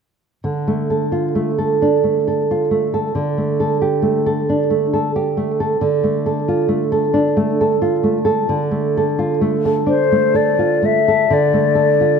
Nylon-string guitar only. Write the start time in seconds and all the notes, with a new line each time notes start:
0.44 D3
0.68 A3
0.90 A4
1.12 F4
1.35 A3
1.58 A4
1.82 D4
2.04 A3
2.28 A4
2.51 F4
2.71 A3
2.94 A4
3.15 D3
3.38 A3
3.60 A4
3.82 G4
4.02 A3
4.26 A4
4.49 D4
4.70 A3
4.93 A4
5.16 G4
5.37 A3
5.60 A4
5.81 D3
6.04 A3
6.26 A4
6.48 F4
6.68 A3
6.92 A4
7.14 D4
7.37 A3
7.61 A4
7.82 F4
8.04 A3
8.25 A4
8.49 D3
8.71 A3
8.97 A4
9.19 F4
9.41 A3
9.65 A4
9.86 D4
10.12 A3
10.34 A4
10.59 F4
10.82 A3
11.08 A4
11.30 D3
11.54 A3
11.75 A4
12.01 F4